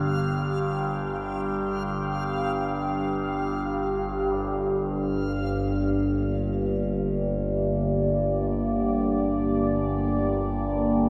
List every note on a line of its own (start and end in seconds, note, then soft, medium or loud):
0.00 4.36 G1 medium
0.00 4.36 G2 medium
0.00 4.37 G2 medium
0.00 11.09 G4 medium
0.00 4.38 F5 medium
0.00 5.91 G5 medium
4.37 11.09 G1 medium
4.37 11.09 G2 medium
4.37 11.09 A#3 medium
6.71 11.09 D5 medium